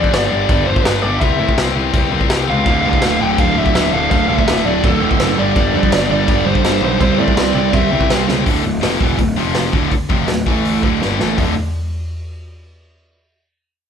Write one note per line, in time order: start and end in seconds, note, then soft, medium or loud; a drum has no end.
0.00 0.11 G2 medium
0.00 0.11 D3 medium
0.00 0.13 G3 loud
0.00 0.26 D5 loud
0.04 kick medium
0.12 0.27 G1 loud
0.12 0.29 G2 loud
0.12 0.30 D3 loud
0.12 0.31 G3 loud
0.12 snare loud
0.12 crash medium
0.29 0.45 G1 medium
0.29 0.47 G2 medium
0.29 0.48 D3 medium
0.29 0.48 G3 loud
0.29 0.64 D5 loud
0.48 0.63 G1 loud
0.48 0.65 G2 loud
0.48 0.66 D3 loud
0.48 0.66 G3 loud
0.48 kick loud
0.48 crash medium
0.66 0.81 G1 loud
0.66 0.84 G2 medium
0.66 0.84 D3 medium
0.66 0.84 G3 loud
0.66 0.83 C5 medium
0.76 kick loud
0.83 0.99 G1 loud
0.83 1.01 G2 loud
0.83 1.02 D3 loud
0.83 1.02 G3 loud
0.83 1.02 B4 medium
0.83 snare loud
0.83 crash medium
1.02 1.17 G1 loud
1.02 1.20 G2 medium
1.02 1.20 D3 loud
1.02 1.20 G3 loud
1.02 1.21 D5 loud
1.20 1.35 C2 loud
1.20 1.38 C3 loud
1.20 1.38 G3 loud
1.20 1.39 C4 loud
1.20 1.54 E5 loud
1.20 kick loud
1.20 crash medium
1.39 1.54 A2 medium
1.39 1.55 C3 medium
1.39 1.56 G3 loud
1.39 1.56 C4 medium
1.49 kick medium
1.56 1.72 C2 loud
1.56 1.73 C3 loud
1.56 1.74 G3 loud
1.56 1.74 C4 loud
1.56 snare loud
1.56 crash medium
1.75 1.90 C2 loud
1.75 1.91 C3 medium
1.75 1.92 G3 medium
1.75 1.93 C4 medium
1.93 2.08 C2 medium
1.93 2.10 C3 loud
1.93 2.10 G3 loud
1.93 2.11 C4 loud
1.93 kick loud
1.93 crash medium
2.11 2.26 C2 medium
2.11 2.27 C3 medium
2.11 2.28 G3 medium
2.11 2.28 C4 medium
2.21 kick medium
2.28 2.44 C2 medium
2.28 2.45 C3 loud
2.28 2.46 G3 loud
2.28 2.46 C4 loud
2.28 snare loud
2.28 crash medium
2.47 2.63 C#2 medium
2.47 2.64 C3 medium
2.47 2.65 G3 medium
2.47 2.65 C4 loud
2.47 3.21 F5 loud
2.65 2.80 D1 medium
2.65 2.83 D2 medium
2.65 2.83 A2 loud
2.65 2.84 D3 loud
2.65 kick loud
2.65 crash medium
2.84 2.99 C2 medium
2.84 3.02 D2 medium
2.84 3.01 A2 medium
2.84 3.03 D3 medium
2.93 kick medium
3.02 3.17 D1 medium
3.02 3.19 D2 loud
3.02 3.20 A2 loud
3.02 3.20 D3 loud
3.02 snare loud
3.02 crash medium
3.20 3.35 D1 medium
3.20 3.37 D2 medium
3.20 3.38 A2 medium
3.20 3.38 D3 medium
3.20 3.39 G5 loud
3.38 3.52 D1 loud
3.38 3.55 D2 loud
3.38 3.56 A2 loud
3.38 3.56 D3 loud
3.38 3.58 F5 loud
3.38 kick loud
3.38 crash medium
3.56 3.70 D1 medium
3.56 3.73 D2 medium
3.56 3.74 A2 medium
3.56 3.75 D3 medium
3.56 3.93 E5 loud
3.66 kick medium
3.75 3.89 D1 loud
3.75 3.91 D2 loud
3.75 3.92 A2 loud
3.75 3.92 D3 loud
3.75 snare loud
3.75 crash medium
3.93 4.07 D1 medium
3.93 4.09 D2 medium
3.93 4.10 A2 medium
3.93 4.11 D3 medium
3.93 4.10 F5 loud
4.11 4.25 D1 medium
4.11 4.27 D2 medium
4.11 4.27 A2 loud
4.11 4.28 D3 loud
4.11 4.29 F5 loud
4.11 kick loud
4.11 crash medium
4.28 4.44 C2 medium
4.28 4.45 D2 medium
4.28 4.46 A2 medium
4.28 4.46 D3 loud
4.28 4.63 E5 loud
4.39 kick medium
4.46 4.61 D1 loud
4.46 4.64 D2 loud
4.46 4.64 A2 loud
4.46 4.65 D3 loud
4.46 snare loud
4.46 crash medium
4.65 4.80 D1 loud
4.65 4.82 D2 medium
4.65 4.83 A2 medium
4.65 4.83 D3 loud
4.65 4.84 D5 loud
4.83 4.97 D1 medium
4.83 5.00 D2 loud
4.83 5.00 A2 medium
4.83 5.01 D3 loud
4.83 5.40 A4 loud
4.83 kick loud
4.83 crash medium
5.01 5.16 D1 medium
5.01 5.17 D2 medium
5.01 5.18 A2 medium
5.01 5.18 D3 medium
5.11 kick medium
5.19 5.34 F#1 loud
5.19 5.36 D2 loud
5.19 5.36 A2 loud
5.19 5.37 D3 loud
5.19 snare loud
5.19 crash medium
5.38 5.52 G1 loud
5.38 5.54 G2 medium
5.38 5.55 D3 loud
5.38 5.56 G3 loud
5.38 6.10 D5 loud
5.55 5.70 G1 loud
5.55 5.73 G2 loud
5.55 5.73 D3 loud
5.55 5.74 G3 loud
5.55 kick loud
5.55 crash medium
5.74 5.89 F2 medium
5.74 5.90 G2 medium
5.74 5.91 D3 medium
5.74 5.92 G3 loud
5.83 kick medium
5.91 6.06 G1 medium
5.91 6.08 G2 loud
5.91 6.09 D3 loud
5.91 6.10 G3 loud
5.91 snare loud
5.91 crash medium
6.09 6.24 G1 loud
6.09 6.26 G2 medium
6.09 6.27 D3 medium
6.09 6.27 G3 medium
6.09 6.45 D5 loud
6.27 6.42 G1 loud
6.27 6.44 G2 loud
6.27 6.45 D3 loud
6.27 6.45 G3 loud
6.27 kick loud
6.27 crash medium
6.45 6.60 G1 medium
6.45 6.62 G2 medium
6.45 6.63 D3 medium
6.45 6.63 G3 loud
6.45 6.83 C5 loud
6.55 kick medium
6.63 6.78 G1 loud
6.63 6.80 G2 loud
6.63 6.81 D3 loud
6.63 6.81 G3 loud
6.63 snare loud
6.63 crash medium
6.81 6.96 B1 loud
6.81 6.98 G2 medium
6.81 6.99 D3 medium
6.81 6.98 G3 loud
6.81 7.01 C5 medium
6.99 7.15 C2 loud
6.99 7.16 C3 loud
6.99 7.16 G3 loud
6.99 7.17 C4 loud
6.99 7.19 C5 loud
6.99 kick loud
6.99 crash medium
7.17 7.33 A2 medium
7.17 7.34 C3 medium
7.17 7.34 G3 medium
7.17 7.35 C4 loud
7.17 7.54 D5 loud
7.28 kick medium
7.35 7.51 C2 medium
7.35 7.52 C3 loud
7.35 7.53 G3 loud
7.35 7.53 C4 loud
7.35 snare loud
7.35 crash medium
7.53 7.70 C2 medium
7.53 7.70 C3 medium
7.53 7.70 G3 medium
7.53 7.71 C4 medium
7.53 7.74 D5 loud
7.71 7.87 C2 loud
7.71 7.89 C3 loud
7.71 7.89 G3 loud
7.71 7.89 C4 loud
7.71 8.08 E5 medium
7.71 kick loud
7.71 crash medium
7.90 8.06 C2 medium
7.90 8.07 C3 medium
7.90 8.08 G3 medium
7.90 8.08 C4 medium
8.01 kick medium
8.09 8.24 C2 medium
8.09 8.26 C3 loud
8.09 8.26 G3 loud
8.09 8.27 C4 loud
8.09 snare loud
8.09 crash medium
8.27 8.42 C#2 medium
8.27 8.45 C3 medium
8.27 8.45 G3 medium
8.27 8.45 C4 medium
8.27 snare medium
8.45 8.63 D1 medium
8.45 8.62 D2 medium
8.45 8.63 A2 medium
8.45 8.64 D3 loud
8.45 kick loud
8.45 open hi-hat medium
8.63 8.82 D1 medium
8.63 8.78 D2 medium
8.63 8.79 A2 medium
8.81 9.00 F1 medium
8.81 8.99 F2 loud
8.81 8.99 C3 medium
8.81 9.00 F3 loud
8.81 snare loud
8.81 open hi-hat medium
8.99 9.18 E1 medium
8.99 9.18 E2 medium
8.99 9.18 B2 medium
8.99 9.18 E3 loud
8.99 kick loud
9.18 9.36 D1 medium
9.18 9.33 D2 medium
9.18 9.34 A2 medium
9.18 kick loud
9.18 open hi-hat medium
9.36 9.71 F1 medium
9.36 9.73 F2 medium
9.36 9.73 C3 medium
9.36 9.73 F3 medium
9.55 snare loud
9.55 open hi-hat medium
9.73 9.90 D1 medium
9.73 9.90 D2 medium
9.73 9.91 A2 medium
9.73 9.92 D3 loud
9.73 kick loud
9.91 muted distorted electric guitar stroke medium
9.91 muted overdriven electric guitar stroke medium
9.91 muted picked electric bass stroke soft
9.91 kick loud
9.91 open hi-hat medium
10.09 10.27 F1 medium
10.09 10.27 F2 medium
10.09 10.28 C3 medium
10.09 10.28 F3 medium
10.09 kick loud
10.28 10.46 D1 medium
10.28 10.43 D2 medium
10.28 10.43 A2 medium
10.28 snare loud
10.28 open hi-hat medium
10.46 10.81 A1 medium
10.46 10.82 A2 medium
10.46 10.83 E3 medium
10.46 10.83 A3 medium
10.46 kick loud
10.65 open hi-hat medium
10.83 11.00 D1 medium
10.83 11.00 D2 medium
10.83 11.01 A2 medium
10.83 11.00 D3 medium
10.83 kick loud
11.00 11.19 G1 medium
11.00 11.19 G2 medium
11.00 11.19 D3 medium
11.00 11.19 G3 medium
11.00 snare medium
11.19 11.37 A1 medium
11.19 11.37 A2 medium
11.19 11.37 E3 medium
11.19 11.38 A3 medium
11.19 snare medium
11.37 11.55 D1 medium
11.37 11.52 D2 medium
11.37 11.53 A2 medium
11.37 11.53 D3 medium
11.37 kick medium
11.37 floor tom medium
11.37 open hi-hat medium